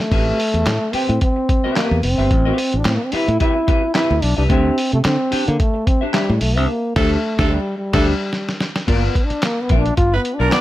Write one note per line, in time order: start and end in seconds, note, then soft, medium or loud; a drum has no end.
0.00 0.96 A3 loud
0.00 snare medium
0.11 0.31 A1 loud
0.11 0.37 C4 medium
0.11 0.37 G4 medium
0.11 0.37 B4 medium
0.11 0.38 E5 medium
0.11 kick loud
0.11 closed hi-hat medium
0.11 crash medium
0.40 open hi-hat medium
0.54 0.63 E2 medium
0.54 muted clean electric guitar stroke medium
0.54 closed hi-hat medium
0.66 0.77 A2 loud
0.66 snare loud
0.66 clap loud
0.66 closed hi-hat medium
0.93 1.08 C4 medium
0.93 1.21 C4 loud
0.93 1.08 G4 medium
0.93 1.08 B4 medium
0.93 1.09 G5 medium
0.93 muted fingered electric bass stroke soft
0.93 open hi-hat medium
1.09 1.18 A2 medium
1.09 muted clean electric guitar stroke soft
1.09 closed hi-hat medium
1.21 1.73 C4 medium
1.21 muted clean electric guitar stroke soft
1.21 kick medium
1.21 closed hi-hat medium
1.36 muted clean electric guitar stroke soft
1.49 kick loud
1.49 closed hi-hat medium
1.64 1.74 C4 medium
1.64 1.75 G4 medium
1.64 1.76 B4 medium
1.64 1.76 E5 medium
1.76 2.02 A#3 medium
1.76 1.97 C4 medium
1.76 1.97 G4 medium
1.76 1.97 B4 medium
1.76 1.97 E5 medium
1.76 snare loud
1.76 clap medium
1.76 closed hi-hat medium
1.91 2.00 E2 medium
2.03 2.14 F1 medium
2.03 2.79 C4 loud
2.03 muted clean electric guitar stroke soft
2.03 open hi-hat medium
2.18 2.27 G1 medium
2.18 2.29 C4 medium
2.18 2.30 G4 medium
2.18 2.30 B4 medium
2.18 2.30 E5 medium
2.31 2.50 A1 medium
2.31 muted clean electric guitar stroke soft
2.31 kick loud
2.31 closed hi-hat medium
2.45 2.57 C4 medium
2.45 2.57 G4 medium
2.45 2.58 B4 medium
2.45 2.58 E5 medium
2.58 muted clean electric guitar stroke soft
2.58 open hi-hat medium
2.72 2.82 A1 medium
2.72 muted clean electric guitar stroke soft
2.72 closed hi-hat medium
2.78 2.87 D4 medium
2.84 2.97 A2 loud
2.84 2.97 C4 medium
2.84 snare loud
2.84 clap loud
2.84 closed hi-hat medium
2.95 3.07 A#3 medium
3.01 muted clean electric guitar stroke soft
3.05 3.15 C4 medium
3.12 3.30 C4 medium
3.12 3.41 E4 loud
3.12 3.28 G4 medium
3.12 3.27 B4 medium
3.12 3.27 E5 loud
3.12 muted fingered electric bass stroke soft
3.12 open hi-hat medium
3.28 3.37 A2 loud
3.28 muted clean electric guitar stroke medium
3.28 closed hi-hat soft
3.40 3.58 C4 medium
3.40 3.92 E4 loud
3.40 3.55 G4 medium
3.40 3.55 B4 loud
3.40 3.54 E5 medium
3.40 kick medium
3.40 closed hi-hat medium
3.55 muted clean electric guitar stroke soft
3.67 3.82 C4 medium
3.67 3.82 G4 medium
3.67 3.82 B4 medium
3.67 3.81 E5 medium
3.67 kick loud
3.67 closed hi-hat medium
3.82 muted clean electric guitar stroke soft
3.94 4.12 C4 medium
3.94 4.24 E4 loud
3.94 4.13 G4 medium
3.94 4.13 B4 medium
3.94 4.13 E5 medium
3.94 snare loud
3.94 clap medium
3.94 closed hi-hat medium
4.11 4.19 D2 medium
4.22 4.34 B1 medium
4.22 4.37 D4 loud
4.22 muted clean electric guitar stroke soft
4.22 open hi-hat medium
4.37 4.47 C2 medium
4.37 4.48 C4 medium
4.37 4.43 D4 medium
4.37 4.48 G4 medium
4.37 4.49 B4 medium
4.37 4.49 E5 medium
4.49 4.70 D2 loud
4.49 4.90 C4 loud
4.49 4.75 D4 medium
4.49 4.75 G4 medium
4.49 4.75 C5 medium
4.49 4.76 E5 loud
4.49 kick loud
4.49 closed hi-hat medium
4.78 open hi-hat medium
4.92 5.02 C3 medium
4.92 4.99 A3 medium
4.92 muted clean electric guitar stroke soft
4.92 closed hi-hat medium
5.04 5.16 D3 loud
5.04 5.45 C4 loud
5.04 muted clean electric guitar stroke soft
5.04 snare loud
5.04 clap medium
5.04 closed hi-hat medium
5.31 5.46 D4 medium
5.31 5.46 G4 medium
5.31 5.46 C5 medium
5.31 5.46 G5 medium
5.31 muted fingered electric bass stroke soft
5.31 open hi-hat medium
5.46 5.57 D3 medium
5.46 5.61 A#3 medium
5.46 muted clean electric guitar stroke soft
5.46 closed hi-hat medium
5.59 5.88 A3 medium
5.59 muted clean electric guitar stroke soft
5.59 kick medium
5.59 closed hi-hat medium
5.74 muted clean electric guitar stroke soft
5.87 6.02 C4 medium
5.87 kick loud
5.87 closed hi-hat medium
6.01 6.12 D4 medium
6.01 6.12 G4 medium
6.01 6.13 C5 medium
6.01 6.14 E5 medium
6.13 6.43 G3 medium
6.13 6.31 D4 medium
6.13 6.32 G4 medium
6.13 6.32 C5 medium
6.13 6.32 E5 medium
6.13 snare loud
6.13 clap medium
6.13 closed hi-hat medium
6.30 6.38 A2 medium
6.41 6.57 B1 medium
6.41 6.58 A3 loud
6.41 muted clean electric guitar stroke soft
6.41 open hi-hat medium
6.56 6.66 C2 medium
6.56 6.70 C4 medium
6.56 6.69 D4 medium
6.56 6.69 G4 medium
6.56 6.68 C5 medium
6.56 6.68 E5 medium
6.69 6.95 A#3 medium
6.96 7.15 D2 medium
6.96 7.52 A3 medium
6.96 7.16 D4 medium
6.96 7.16 G4 medium
6.96 7.11 A4 loud
6.96 7.16 C5 loud
6.96 7.15 E5 loud
6.96 kick loud
6.96 snare loud
6.96 crash medium
7.39 7.57 D2 loud
7.39 7.57 D4 loud
7.39 7.57 G4 loud
7.39 7.52 A4 loud
7.39 7.58 C5 loud
7.39 7.58 E5 loud
7.39 kick loud
7.39 snare loud
7.50 7.77 G3 loud
7.78 8.56 G3 medium
7.93 8.12 D2 loud
7.93 8.11 D4 loud
7.93 8.12 G4 medium
7.93 8.07 A4 medium
7.93 8.12 C5 medium
7.93 8.12 E5 medium
7.93 kick loud
7.93 snare loud
7.93 crash medium
8.33 snare medium
8.49 snare medium
8.60 snare medium
8.76 snare medium
8.87 9.08 G1 loud
8.87 9.08 A#3 medium
8.87 9.13 B3 medium
8.87 9.13 F4 medium
8.87 9.14 A#4 medium
8.87 9.14 D5 medium
8.87 kick loud
8.87 closed hi-hat medium
8.87 crash medium
9.06 9.26 B3 medium
9.15 kick medium
9.15 closed hi-hat medium
9.24 9.45 D4 loud
9.30 muted clean electric guitar stroke soft
9.30 muted fingered electric bass stroke soft
9.30 closed hi-hat medium
9.42 9.63 A#3 loud
9.42 muted clean electric guitar stroke soft
9.42 snare loud
9.42 clap loud
9.42 closed hi-hat medium
9.61 9.80 B3 loud
9.69 9.90 A#1 medium
9.69 9.84 B3 medium
9.69 9.84 F4 medium
9.69 9.84 A#4 medium
9.69 9.84 E5 medium
9.69 kick loud
9.69 closed hi-hat medium
9.79 9.97 D4 loud
9.85 muted clean electric guitar stroke soft
9.85 closed hi-hat medium
9.97 10.17 G1 medium
9.97 10.17 F4 loud
9.97 muted clean electric guitar stroke soft
9.97 kick medium
9.97 closed hi-hat medium
10.12 10.36 B3 loud
10.12 10.21 B4 medium
10.12 muted clean electric guitar stroke soft
10.25 closed hi-hat medium
10.34 10.54 D4 loud
10.39 10.49 B1 medium
10.39 10.50 B3 medium
10.39 10.51 F4 medium
10.39 10.52 A#4 medium
10.39 10.48 A#4 medium
10.39 10.52 D5 medium
10.51 10.61 B3 medium
10.51 10.61 B3 loud
10.51 10.61 F4 medium
10.51 10.61 A#4 medium
10.51 10.61 D5 loud
10.51 10.61 D5 medium
10.51 snare loud
10.51 clap loud
10.51 closed hi-hat medium